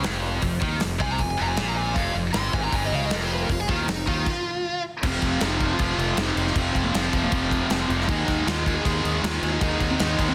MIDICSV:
0, 0, Header, 1, 7, 480
1, 0, Start_track
1, 0, Key_signature, -4, "minor"
1, 0, Tempo, 383142
1, 531, Time_signature, 4, 2, 24, 8
1, 12961, End_track
2, 0, Start_track
2, 0, Title_t, "Lead electric guitar"
2, 0, Program_c, 0, 29
2, 1268, Note_on_c, 0, 80, 101
2, 1377, Note_off_c, 0, 80, 0
2, 1404, Note_on_c, 0, 82, 82
2, 1505, Note_off_c, 0, 82, 0
2, 1515, Note_on_c, 0, 80, 88
2, 1620, Note_off_c, 0, 80, 0
2, 1637, Note_on_c, 0, 80, 91
2, 1742, Note_off_c, 0, 80, 0
2, 1782, Note_on_c, 0, 82, 90
2, 1854, Note_off_c, 0, 82, 0
2, 1859, Note_on_c, 0, 80, 87
2, 1955, Note_off_c, 0, 80, 0
2, 1970, Note_on_c, 0, 80, 97
2, 2106, Note_off_c, 0, 80, 0
2, 2106, Note_on_c, 0, 82, 91
2, 2208, Note_off_c, 0, 82, 0
2, 2213, Note_on_c, 0, 80, 91
2, 2429, Note_on_c, 0, 77, 102
2, 2447, Note_off_c, 0, 80, 0
2, 2674, Note_off_c, 0, 77, 0
2, 2921, Note_on_c, 0, 84, 95
2, 3161, Note_off_c, 0, 84, 0
2, 3186, Note_on_c, 0, 80, 90
2, 3297, Note_off_c, 0, 80, 0
2, 3310, Note_on_c, 0, 82, 77
2, 3420, Note_off_c, 0, 82, 0
2, 3443, Note_on_c, 0, 80, 82
2, 3546, Note_off_c, 0, 80, 0
2, 3580, Note_on_c, 0, 75, 93
2, 3675, Note_off_c, 0, 75, 0
2, 3703, Note_on_c, 0, 77, 88
2, 3797, Note_off_c, 0, 77, 0
2, 3834, Note_on_c, 0, 75, 85
2, 3923, Note_off_c, 0, 75, 0
2, 3962, Note_on_c, 0, 70, 92
2, 4072, Note_off_c, 0, 70, 0
2, 4072, Note_on_c, 0, 72, 85
2, 4183, Note_off_c, 0, 72, 0
2, 4183, Note_on_c, 0, 71, 93
2, 4277, Note_off_c, 0, 71, 0
2, 4292, Note_on_c, 0, 70, 80
2, 4391, Note_off_c, 0, 70, 0
2, 4414, Note_on_c, 0, 65, 87
2, 4508, Note_off_c, 0, 65, 0
2, 4508, Note_on_c, 0, 68, 96
2, 4641, Note_off_c, 0, 68, 0
2, 4641, Note_on_c, 0, 65, 83
2, 4745, Note_off_c, 0, 65, 0
2, 4878, Note_on_c, 0, 63, 96
2, 5113, Note_off_c, 0, 63, 0
2, 5113, Note_on_c, 0, 65, 106
2, 6036, Note_off_c, 0, 65, 0
2, 6344, Note_on_c, 0, 60, 87
2, 6791, Note_off_c, 0, 60, 0
2, 6796, Note_on_c, 0, 63, 90
2, 7121, Note_off_c, 0, 63, 0
2, 7178, Note_on_c, 0, 65, 84
2, 7280, Note_off_c, 0, 65, 0
2, 7293, Note_on_c, 0, 65, 94
2, 7722, Note_off_c, 0, 65, 0
2, 7781, Note_on_c, 0, 63, 90
2, 8093, Note_off_c, 0, 63, 0
2, 8108, Note_on_c, 0, 63, 88
2, 8219, Note_off_c, 0, 63, 0
2, 8219, Note_on_c, 0, 60, 89
2, 8573, Note_off_c, 0, 60, 0
2, 8578, Note_on_c, 0, 58, 88
2, 8684, Note_off_c, 0, 58, 0
2, 8684, Note_on_c, 0, 60, 87
2, 9060, Note_off_c, 0, 60, 0
2, 9066, Note_on_c, 0, 58, 82
2, 9174, Note_off_c, 0, 58, 0
2, 9179, Note_on_c, 0, 60, 82
2, 9846, Note_off_c, 0, 60, 0
2, 10128, Note_on_c, 0, 63, 93
2, 10577, Note_off_c, 0, 63, 0
2, 10618, Note_on_c, 0, 65, 101
2, 10960, Note_off_c, 0, 65, 0
2, 10965, Note_on_c, 0, 68, 105
2, 11086, Note_off_c, 0, 68, 0
2, 11101, Note_on_c, 0, 68, 99
2, 11543, Note_off_c, 0, 68, 0
2, 11584, Note_on_c, 0, 65, 98
2, 11917, Note_off_c, 0, 65, 0
2, 11932, Note_on_c, 0, 65, 89
2, 12056, Note_off_c, 0, 65, 0
2, 12061, Note_on_c, 0, 63, 94
2, 12410, Note_off_c, 0, 63, 0
2, 12415, Note_on_c, 0, 60, 89
2, 12534, Note_off_c, 0, 60, 0
2, 12534, Note_on_c, 0, 63, 88
2, 12885, Note_off_c, 0, 63, 0
2, 12890, Note_on_c, 0, 60, 91
2, 12961, Note_off_c, 0, 60, 0
2, 12961, End_track
3, 0, Start_track
3, 0, Title_t, "Tonewheel organ"
3, 0, Program_c, 1, 16
3, 0, Note_on_c, 1, 53, 65
3, 0, Note_on_c, 1, 60, 60
3, 0, Note_on_c, 1, 67, 69
3, 5301, Note_off_c, 1, 53, 0
3, 5308, Note_off_c, 1, 60, 0
3, 5309, Note_off_c, 1, 67, 0
3, 6313, Note_on_c, 1, 80, 85
3, 6317, Note_on_c, 1, 72, 68
3, 6318, Note_on_c, 1, 65, 75
3, 10106, Note_off_c, 1, 65, 0
3, 10111, Note_on_c, 1, 63, 78
3, 12961, Note_off_c, 1, 63, 0
3, 12961, Note_off_c, 1, 72, 0
3, 12961, Note_off_c, 1, 80, 0
3, 12961, End_track
4, 0, Start_track
4, 0, Title_t, "Distorted electric guitar"
4, 0, Program_c, 2, 30
4, 12749, Note_on_c, 2, 56, 88
4, 12961, Note_off_c, 2, 56, 0
4, 12961, End_track
5, 0, Start_track
5, 0, Title_t, "Distorted electric guitar"
5, 0, Program_c, 3, 30
5, 49, Note_on_c, 3, 41, 101
5, 518, Note_off_c, 3, 41, 0
5, 533, Note_on_c, 3, 41, 68
5, 724, Note_off_c, 3, 41, 0
5, 755, Note_on_c, 3, 51, 103
5, 994, Note_on_c, 3, 41, 68
5, 996, Note_off_c, 3, 51, 0
5, 1195, Note_off_c, 3, 41, 0
5, 1240, Note_on_c, 3, 48, 106
5, 1479, Note_off_c, 3, 48, 0
5, 1489, Note_on_c, 3, 41, 64
5, 1683, Note_off_c, 3, 41, 0
5, 1720, Note_on_c, 3, 41, 99
5, 1960, Note_off_c, 3, 41, 0
5, 1966, Note_on_c, 3, 46, 103
5, 2443, Note_off_c, 3, 46, 0
5, 2443, Note_on_c, 3, 41, 112
5, 2678, Note_off_c, 3, 41, 0
5, 2693, Note_on_c, 3, 41, 76
5, 2886, Note_off_c, 3, 41, 0
5, 2937, Note_on_c, 3, 43, 108
5, 3168, Note_off_c, 3, 43, 0
5, 3173, Note_on_c, 3, 44, 102
5, 3407, Note_off_c, 3, 44, 0
5, 3418, Note_on_c, 3, 43, 97
5, 3650, Note_off_c, 3, 43, 0
5, 3650, Note_on_c, 3, 49, 104
5, 3886, Note_off_c, 3, 49, 0
5, 3896, Note_on_c, 3, 41, 102
5, 4369, Note_off_c, 3, 41, 0
5, 4382, Note_on_c, 3, 41, 80
5, 4571, Note_off_c, 3, 41, 0
5, 4619, Note_on_c, 3, 51, 102
5, 4851, Note_off_c, 3, 51, 0
5, 4858, Note_on_c, 3, 41, 72
5, 5049, Note_off_c, 3, 41, 0
5, 5101, Note_on_c, 3, 51, 111
5, 5332, Note_off_c, 3, 51, 0
5, 6308, Note_on_c, 3, 41, 99
5, 6312, Note_on_c, 3, 48, 113
5, 6318, Note_on_c, 3, 53, 111
5, 6767, Note_off_c, 3, 48, 0
5, 6771, Note_off_c, 3, 41, 0
5, 6776, Note_on_c, 3, 41, 95
5, 6782, Note_on_c, 3, 48, 98
5, 6783, Note_off_c, 3, 53, 0
5, 6788, Note_on_c, 3, 53, 100
5, 7020, Note_off_c, 3, 41, 0
5, 7020, Note_off_c, 3, 48, 0
5, 7025, Note_on_c, 3, 41, 94
5, 7033, Note_off_c, 3, 53, 0
5, 7035, Note_on_c, 3, 48, 93
5, 7038, Note_on_c, 3, 53, 100
5, 7257, Note_off_c, 3, 41, 0
5, 7265, Note_off_c, 3, 48, 0
5, 7267, Note_off_c, 3, 53, 0
5, 7272, Note_on_c, 3, 41, 93
5, 7280, Note_on_c, 3, 48, 106
5, 7282, Note_on_c, 3, 53, 98
5, 7721, Note_off_c, 3, 41, 0
5, 7728, Note_off_c, 3, 48, 0
5, 7736, Note_off_c, 3, 53, 0
5, 7736, Note_on_c, 3, 41, 77
5, 7743, Note_on_c, 3, 48, 92
5, 7751, Note_on_c, 3, 53, 95
5, 7971, Note_off_c, 3, 41, 0
5, 7977, Note_off_c, 3, 48, 0
5, 7983, Note_off_c, 3, 53, 0
5, 7986, Note_on_c, 3, 41, 81
5, 7992, Note_on_c, 3, 48, 88
5, 7998, Note_on_c, 3, 53, 89
5, 8208, Note_off_c, 3, 41, 0
5, 8215, Note_off_c, 3, 48, 0
5, 8220, Note_off_c, 3, 53, 0
5, 8223, Note_on_c, 3, 41, 101
5, 8230, Note_on_c, 3, 48, 106
5, 8235, Note_on_c, 3, 53, 108
5, 8679, Note_off_c, 3, 41, 0
5, 8682, Note_off_c, 3, 48, 0
5, 8691, Note_off_c, 3, 53, 0
5, 8694, Note_on_c, 3, 41, 84
5, 8697, Note_on_c, 3, 48, 92
5, 8706, Note_on_c, 3, 53, 103
5, 8924, Note_off_c, 3, 41, 0
5, 8932, Note_off_c, 3, 48, 0
5, 8932, Note_off_c, 3, 53, 0
5, 8939, Note_on_c, 3, 41, 92
5, 8947, Note_on_c, 3, 48, 94
5, 8947, Note_on_c, 3, 53, 108
5, 9146, Note_off_c, 3, 41, 0
5, 9156, Note_off_c, 3, 48, 0
5, 9161, Note_on_c, 3, 41, 94
5, 9164, Note_off_c, 3, 53, 0
5, 9171, Note_on_c, 3, 48, 107
5, 9179, Note_on_c, 3, 53, 104
5, 9630, Note_off_c, 3, 41, 0
5, 9640, Note_off_c, 3, 48, 0
5, 9642, Note_off_c, 3, 53, 0
5, 9645, Note_on_c, 3, 41, 90
5, 9655, Note_on_c, 3, 48, 89
5, 9657, Note_on_c, 3, 53, 99
5, 9881, Note_off_c, 3, 41, 0
5, 9889, Note_off_c, 3, 48, 0
5, 9895, Note_off_c, 3, 53, 0
5, 9896, Note_on_c, 3, 41, 83
5, 9905, Note_on_c, 3, 48, 91
5, 9910, Note_on_c, 3, 53, 98
5, 10120, Note_off_c, 3, 41, 0
5, 10124, Note_off_c, 3, 48, 0
5, 10127, Note_off_c, 3, 53, 0
5, 10136, Note_on_c, 3, 44, 97
5, 10148, Note_on_c, 3, 51, 110
5, 10152, Note_on_c, 3, 56, 117
5, 10591, Note_off_c, 3, 44, 0
5, 10606, Note_off_c, 3, 51, 0
5, 10606, Note_on_c, 3, 44, 95
5, 10611, Note_on_c, 3, 51, 97
5, 10616, Note_off_c, 3, 56, 0
5, 10621, Note_on_c, 3, 56, 102
5, 10842, Note_off_c, 3, 44, 0
5, 10854, Note_off_c, 3, 51, 0
5, 10857, Note_off_c, 3, 56, 0
5, 10857, Note_on_c, 3, 44, 89
5, 10859, Note_on_c, 3, 51, 102
5, 10862, Note_on_c, 3, 56, 97
5, 11065, Note_off_c, 3, 44, 0
5, 11080, Note_off_c, 3, 51, 0
5, 11080, Note_on_c, 3, 44, 100
5, 11089, Note_off_c, 3, 56, 0
5, 11094, Note_on_c, 3, 56, 98
5, 11095, Note_on_c, 3, 51, 98
5, 11551, Note_off_c, 3, 44, 0
5, 11561, Note_off_c, 3, 51, 0
5, 11566, Note_on_c, 3, 44, 77
5, 11575, Note_off_c, 3, 56, 0
5, 11576, Note_on_c, 3, 51, 84
5, 11580, Note_on_c, 3, 56, 98
5, 11802, Note_off_c, 3, 44, 0
5, 11808, Note_off_c, 3, 51, 0
5, 11817, Note_on_c, 3, 44, 86
5, 11823, Note_off_c, 3, 56, 0
5, 11823, Note_on_c, 3, 51, 92
5, 11828, Note_on_c, 3, 56, 98
5, 12038, Note_off_c, 3, 44, 0
5, 12043, Note_off_c, 3, 51, 0
5, 12053, Note_on_c, 3, 44, 94
5, 12058, Note_on_c, 3, 51, 111
5, 12061, Note_off_c, 3, 56, 0
5, 12066, Note_on_c, 3, 56, 119
5, 12514, Note_off_c, 3, 44, 0
5, 12529, Note_on_c, 3, 44, 85
5, 12530, Note_off_c, 3, 51, 0
5, 12542, Note_off_c, 3, 56, 0
5, 12545, Note_on_c, 3, 51, 97
5, 12547, Note_on_c, 3, 56, 96
5, 12766, Note_off_c, 3, 44, 0
5, 12774, Note_off_c, 3, 51, 0
5, 12781, Note_on_c, 3, 44, 97
5, 12789, Note_on_c, 3, 51, 84
5, 12795, Note_off_c, 3, 56, 0
5, 12800, Note_on_c, 3, 56, 111
5, 12961, Note_off_c, 3, 44, 0
5, 12961, Note_off_c, 3, 51, 0
5, 12961, Note_off_c, 3, 56, 0
5, 12961, End_track
6, 0, Start_track
6, 0, Title_t, "Fingered electric bass"
6, 0, Program_c, 4, 33
6, 63, Note_on_c, 4, 29, 84
6, 504, Note_off_c, 4, 29, 0
6, 537, Note_on_c, 4, 29, 73
6, 758, Note_off_c, 4, 29, 0
6, 779, Note_on_c, 4, 39, 90
6, 999, Note_off_c, 4, 39, 0
6, 1036, Note_on_c, 4, 29, 73
6, 1249, Note_off_c, 4, 29, 0
6, 1256, Note_on_c, 4, 36, 94
6, 1478, Note_off_c, 4, 36, 0
6, 1496, Note_on_c, 4, 29, 79
6, 1718, Note_off_c, 4, 29, 0
6, 1757, Note_on_c, 4, 29, 96
6, 1969, Note_off_c, 4, 29, 0
6, 1999, Note_on_c, 4, 34, 82
6, 2434, Note_off_c, 4, 34, 0
6, 2454, Note_on_c, 4, 29, 90
6, 2678, Note_off_c, 4, 29, 0
6, 2692, Note_on_c, 4, 29, 84
6, 2917, Note_off_c, 4, 29, 0
6, 2937, Note_on_c, 4, 31, 96
6, 3160, Note_off_c, 4, 31, 0
6, 3173, Note_on_c, 4, 32, 99
6, 3398, Note_off_c, 4, 32, 0
6, 3413, Note_on_c, 4, 31, 96
6, 3638, Note_off_c, 4, 31, 0
6, 3649, Note_on_c, 4, 37, 90
6, 3875, Note_off_c, 4, 37, 0
6, 3888, Note_on_c, 4, 29, 93
6, 4338, Note_off_c, 4, 29, 0
6, 4372, Note_on_c, 4, 29, 75
6, 4597, Note_off_c, 4, 29, 0
6, 4625, Note_on_c, 4, 39, 93
6, 4844, Note_off_c, 4, 39, 0
6, 4859, Note_on_c, 4, 29, 74
6, 5081, Note_off_c, 4, 29, 0
6, 5106, Note_on_c, 4, 39, 92
6, 5325, Note_off_c, 4, 39, 0
6, 6306, Note_on_c, 4, 29, 98
6, 6499, Note_off_c, 4, 29, 0
6, 6541, Note_on_c, 4, 29, 83
6, 6736, Note_off_c, 4, 29, 0
6, 6781, Note_on_c, 4, 29, 90
6, 7172, Note_off_c, 4, 29, 0
6, 7263, Note_on_c, 4, 29, 94
6, 7457, Note_off_c, 4, 29, 0
6, 7490, Note_on_c, 4, 29, 97
6, 7689, Note_off_c, 4, 29, 0
6, 7729, Note_on_c, 4, 29, 87
6, 7928, Note_off_c, 4, 29, 0
6, 7965, Note_on_c, 4, 29, 89
6, 8165, Note_off_c, 4, 29, 0
6, 8208, Note_on_c, 4, 29, 97
6, 8408, Note_off_c, 4, 29, 0
6, 8459, Note_on_c, 4, 29, 94
6, 8654, Note_off_c, 4, 29, 0
6, 8703, Note_on_c, 4, 29, 96
6, 8896, Note_off_c, 4, 29, 0
6, 8936, Note_on_c, 4, 29, 94
6, 9132, Note_off_c, 4, 29, 0
6, 9169, Note_on_c, 4, 29, 98
6, 9565, Note_off_c, 4, 29, 0
6, 9648, Note_on_c, 4, 29, 92
6, 9847, Note_off_c, 4, 29, 0
6, 9884, Note_on_c, 4, 29, 94
6, 10085, Note_off_c, 4, 29, 0
6, 10131, Note_on_c, 4, 39, 98
6, 10329, Note_off_c, 4, 39, 0
6, 10376, Note_on_c, 4, 39, 92
6, 10571, Note_off_c, 4, 39, 0
6, 10608, Note_on_c, 4, 39, 103
6, 11004, Note_off_c, 4, 39, 0
6, 11091, Note_on_c, 4, 39, 96
6, 11288, Note_off_c, 4, 39, 0
6, 11327, Note_on_c, 4, 39, 88
6, 11526, Note_off_c, 4, 39, 0
6, 11568, Note_on_c, 4, 39, 92
6, 11766, Note_off_c, 4, 39, 0
6, 11805, Note_on_c, 4, 39, 92
6, 12004, Note_off_c, 4, 39, 0
6, 12047, Note_on_c, 4, 39, 95
6, 12246, Note_off_c, 4, 39, 0
6, 12290, Note_on_c, 4, 39, 94
6, 12487, Note_off_c, 4, 39, 0
6, 12529, Note_on_c, 4, 39, 97
6, 12727, Note_off_c, 4, 39, 0
6, 12765, Note_on_c, 4, 39, 91
6, 12961, Note_off_c, 4, 39, 0
6, 12961, End_track
7, 0, Start_track
7, 0, Title_t, "Drums"
7, 45, Note_on_c, 9, 46, 60
7, 55, Note_on_c, 9, 38, 111
7, 170, Note_off_c, 9, 46, 0
7, 180, Note_off_c, 9, 38, 0
7, 524, Note_on_c, 9, 46, 55
7, 532, Note_on_c, 9, 36, 87
7, 649, Note_off_c, 9, 46, 0
7, 657, Note_off_c, 9, 36, 0
7, 773, Note_on_c, 9, 36, 107
7, 899, Note_off_c, 9, 36, 0
7, 1003, Note_on_c, 9, 46, 59
7, 1013, Note_on_c, 9, 38, 108
7, 1128, Note_off_c, 9, 46, 0
7, 1138, Note_off_c, 9, 38, 0
7, 1253, Note_on_c, 9, 36, 101
7, 1378, Note_off_c, 9, 36, 0
7, 1483, Note_on_c, 9, 46, 47
7, 1493, Note_on_c, 9, 36, 80
7, 1608, Note_off_c, 9, 46, 0
7, 1618, Note_off_c, 9, 36, 0
7, 1963, Note_on_c, 9, 46, 55
7, 1973, Note_on_c, 9, 38, 112
7, 2088, Note_off_c, 9, 46, 0
7, 2098, Note_off_c, 9, 38, 0
7, 2454, Note_on_c, 9, 36, 93
7, 2456, Note_on_c, 9, 46, 49
7, 2579, Note_off_c, 9, 36, 0
7, 2581, Note_off_c, 9, 46, 0
7, 2925, Note_on_c, 9, 46, 57
7, 2935, Note_on_c, 9, 38, 118
7, 3050, Note_off_c, 9, 46, 0
7, 3060, Note_off_c, 9, 38, 0
7, 3174, Note_on_c, 9, 36, 95
7, 3299, Note_off_c, 9, 36, 0
7, 3413, Note_on_c, 9, 36, 97
7, 3416, Note_on_c, 9, 46, 54
7, 3538, Note_off_c, 9, 36, 0
7, 3541, Note_off_c, 9, 46, 0
7, 3888, Note_on_c, 9, 46, 63
7, 3898, Note_on_c, 9, 38, 111
7, 4014, Note_off_c, 9, 46, 0
7, 4024, Note_off_c, 9, 38, 0
7, 4378, Note_on_c, 9, 36, 89
7, 4379, Note_on_c, 9, 46, 59
7, 4503, Note_off_c, 9, 36, 0
7, 4505, Note_off_c, 9, 46, 0
7, 4621, Note_on_c, 9, 36, 109
7, 4746, Note_off_c, 9, 36, 0
7, 4862, Note_on_c, 9, 46, 60
7, 4872, Note_on_c, 9, 38, 118
7, 4987, Note_off_c, 9, 46, 0
7, 4997, Note_off_c, 9, 38, 0
7, 5104, Note_on_c, 9, 36, 102
7, 5229, Note_off_c, 9, 36, 0
7, 5341, Note_on_c, 9, 36, 98
7, 5342, Note_on_c, 9, 49, 89
7, 5467, Note_off_c, 9, 36, 0
7, 5467, Note_off_c, 9, 49, 0
7, 6300, Note_on_c, 9, 49, 112
7, 6300, Note_on_c, 9, 57, 79
7, 6305, Note_on_c, 9, 36, 109
7, 6426, Note_off_c, 9, 49, 0
7, 6426, Note_off_c, 9, 57, 0
7, 6431, Note_off_c, 9, 36, 0
7, 6536, Note_on_c, 9, 57, 60
7, 6543, Note_on_c, 9, 36, 89
7, 6662, Note_off_c, 9, 57, 0
7, 6668, Note_off_c, 9, 36, 0
7, 6771, Note_on_c, 9, 57, 83
7, 6781, Note_on_c, 9, 38, 111
7, 6897, Note_off_c, 9, 57, 0
7, 6907, Note_off_c, 9, 38, 0
7, 7020, Note_on_c, 9, 57, 65
7, 7022, Note_on_c, 9, 36, 91
7, 7146, Note_off_c, 9, 57, 0
7, 7147, Note_off_c, 9, 36, 0
7, 7253, Note_on_c, 9, 57, 85
7, 7260, Note_on_c, 9, 36, 107
7, 7378, Note_off_c, 9, 57, 0
7, 7385, Note_off_c, 9, 36, 0
7, 7507, Note_on_c, 9, 57, 66
7, 7632, Note_off_c, 9, 57, 0
7, 7731, Note_on_c, 9, 57, 90
7, 7741, Note_on_c, 9, 38, 117
7, 7856, Note_off_c, 9, 57, 0
7, 7866, Note_off_c, 9, 38, 0
7, 7982, Note_on_c, 9, 57, 73
7, 8107, Note_off_c, 9, 57, 0
7, 8112, Note_on_c, 9, 38, 36
7, 8213, Note_on_c, 9, 57, 92
7, 8214, Note_on_c, 9, 36, 108
7, 8237, Note_off_c, 9, 38, 0
7, 8338, Note_off_c, 9, 57, 0
7, 8339, Note_off_c, 9, 36, 0
7, 8456, Note_on_c, 9, 36, 92
7, 8465, Note_on_c, 9, 57, 67
7, 8581, Note_off_c, 9, 36, 0
7, 8590, Note_off_c, 9, 57, 0
7, 8699, Note_on_c, 9, 57, 86
7, 8709, Note_on_c, 9, 38, 117
7, 8824, Note_off_c, 9, 57, 0
7, 8834, Note_off_c, 9, 38, 0
7, 8933, Note_on_c, 9, 36, 87
7, 8933, Note_on_c, 9, 57, 65
7, 9058, Note_off_c, 9, 57, 0
7, 9059, Note_off_c, 9, 36, 0
7, 9167, Note_on_c, 9, 57, 82
7, 9172, Note_on_c, 9, 36, 101
7, 9293, Note_off_c, 9, 57, 0
7, 9298, Note_off_c, 9, 36, 0
7, 9413, Note_on_c, 9, 36, 86
7, 9423, Note_on_c, 9, 57, 71
7, 9538, Note_off_c, 9, 36, 0
7, 9548, Note_off_c, 9, 57, 0
7, 9647, Note_on_c, 9, 57, 86
7, 9657, Note_on_c, 9, 38, 127
7, 9772, Note_off_c, 9, 57, 0
7, 9782, Note_off_c, 9, 38, 0
7, 9900, Note_on_c, 9, 57, 60
7, 10025, Note_off_c, 9, 57, 0
7, 10036, Note_on_c, 9, 38, 35
7, 10129, Note_on_c, 9, 57, 83
7, 10131, Note_on_c, 9, 36, 116
7, 10161, Note_off_c, 9, 38, 0
7, 10255, Note_off_c, 9, 57, 0
7, 10256, Note_off_c, 9, 36, 0
7, 10371, Note_on_c, 9, 57, 69
7, 10373, Note_on_c, 9, 36, 97
7, 10381, Note_on_c, 9, 38, 37
7, 10496, Note_off_c, 9, 57, 0
7, 10498, Note_off_c, 9, 36, 0
7, 10506, Note_off_c, 9, 38, 0
7, 10617, Note_on_c, 9, 57, 84
7, 10627, Note_on_c, 9, 38, 115
7, 10743, Note_off_c, 9, 57, 0
7, 10753, Note_off_c, 9, 38, 0
7, 10853, Note_on_c, 9, 36, 88
7, 10866, Note_on_c, 9, 57, 65
7, 10978, Note_off_c, 9, 36, 0
7, 10991, Note_off_c, 9, 57, 0
7, 11091, Note_on_c, 9, 36, 106
7, 11101, Note_on_c, 9, 57, 80
7, 11217, Note_off_c, 9, 36, 0
7, 11226, Note_off_c, 9, 57, 0
7, 11339, Note_on_c, 9, 57, 70
7, 11464, Note_off_c, 9, 57, 0
7, 11576, Note_on_c, 9, 57, 93
7, 11587, Note_on_c, 9, 38, 123
7, 11702, Note_off_c, 9, 57, 0
7, 11712, Note_off_c, 9, 38, 0
7, 11811, Note_on_c, 9, 57, 70
7, 11936, Note_off_c, 9, 57, 0
7, 12043, Note_on_c, 9, 36, 114
7, 12044, Note_on_c, 9, 57, 86
7, 12168, Note_off_c, 9, 36, 0
7, 12169, Note_off_c, 9, 57, 0
7, 12283, Note_on_c, 9, 36, 89
7, 12283, Note_on_c, 9, 57, 67
7, 12408, Note_off_c, 9, 36, 0
7, 12408, Note_off_c, 9, 57, 0
7, 12521, Note_on_c, 9, 57, 88
7, 12531, Note_on_c, 9, 38, 121
7, 12646, Note_off_c, 9, 57, 0
7, 12656, Note_off_c, 9, 38, 0
7, 12763, Note_on_c, 9, 36, 87
7, 12765, Note_on_c, 9, 57, 70
7, 12888, Note_off_c, 9, 36, 0
7, 12891, Note_off_c, 9, 57, 0
7, 12961, End_track
0, 0, End_of_file